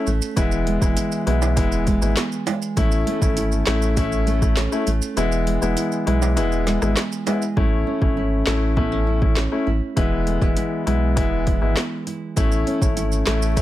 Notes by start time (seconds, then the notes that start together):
Already playing: C#4 E4
0.07 A1 A3, maracas
0.22 maracas
0.36 E1 E3 G#3 B3 E4, kick, closed hi-hat, maracas
0.52 maracas
0.67 G#3, closed hi-hat
0.81 E1 G#3 B3 E4, kick, maracas
0.97 E4, closed hi-hat, maracas
1.12 maracas
1.26 B1 G#3 B3 E4, closed hi-hat
1.42 high timbale, maracas
1.56 E1 G#3 B3 E4, kick, closed hi-hat, maracas
1.72 maracas
1.87 G#3, kick, closed hi-hat, maracas
2.02 G#1 G#3 B3 E4, maracas
2.17 B3, snare, clap, closed hi-hat, maracas
2.32 maracas
2.47 G#3, closed hi-hat, high timbale, maracas
2.62 maracas
2.77 A1 A3 C#4 E4, kick, closed hi-hat, maracas
2.92 maracas
3.07 A3, closed hi-hat
3.22 G#1 A3 C#4 E4, kick, maracas
3.37 E4, closed hi-hat, maracas
3.52 maracas
3.67 A1 A3 C#4 E4, snare, clap, closed hi-hat
3.82 maracas
3.97 A3 C#4 E4, kick, closed hi-hat, maracas
4.12 maracas
4.27 A3, closed hi-hat, maracas
4.42 A3 C#4 E4, kick, maracas
4.57 C#4, snare, clap, closed hi-hat, maracas
4.72 A3 C#4 E4, maracas
4.87 A1 A3, closed hi-hat, maracas
5.02 maracas
5.17 E1 E3 G#3 B3 E4, closed hi-hat, maracas
5.32 maracas
5.47 G#3, closed hi-hat
5.62 E1 G#3 B3 E4, maracas
5.77 E4, closed hi-hat, maracas
5.92 maracas
6.06 B1 G#3 B3 E4, closed hi-hat
6.22 high timbale, maracas
6.36 E1 G#3 B3 E4, closed hi-hat, maracas
6.52 maracas
6.67 G#3, snare, closed hi-hat, maracas
6.82 G#1 G#3 B3 E4, cross-stick, maracas
6.97 B3, snare, clap, closed hi-hat, maracas
7.12 maracas
7.27 G#3 B3 E4, closed hi-hat, high timbale, maracas
7.42 maracas
7.57 A1 A3 C#4 E4, kick
7.87 C#4
8.02 G#1 A3 C#4 E4, kick
8.17 E4
8.47 A1 A3 C#4 E4, snare, clap
8.76 A3 B3 C#4 E4, kick
8.92 C#4
9.07 E4
9.22 A3 C#4 E4, kick
9.37 C#4, snare, clap
9.51 A3 C#4 E4
9.67 A1 E4
9.96 E1 E3 G#3 B3 E4, kick, closed hi-hat
10.27 A3, closed hi-hat
10.41 E1 G#3 B3 E4, kick
10.57 E4, closed hi-hat
10.86 B1 G#3 B3 E4, closed hi-hat
11.16 E1 G#3 B3 E4, kick, closed hi-hat
11.47 E4, kick, closed hi-hat
11.61 G#1 G#3 B3 E4
11.77 B3, snare, clap, closed hi-hat
12.07 E4, closed hi-hat
12.36 A1 A3 C#4 E4, kick, closed hi-hat, maracas
12.52 maracas
12.67 C#4, closed hi-hat
12.82 G#1 A3 C#4 E4, kick, maracas
12.97 E4, closed hi-hat, maracas
13.12 maracas
13.27 A1 A3 C#4 E4, snare, clap, closed hi-hat, maracas
13.42 maracas
13.56 A3 C#4 E4, kick, closed hi-hat, maracas